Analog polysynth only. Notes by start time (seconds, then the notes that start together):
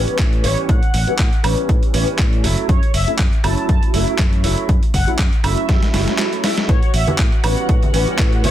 0.44 C#5
0.69 F#5
2.69 C#5
2.94 E5
3.44 A5
3.58 A5
3.69 A5
4.94 F#5
5.44 E5
6.69 C#5
6.94 E5
8.44 C#5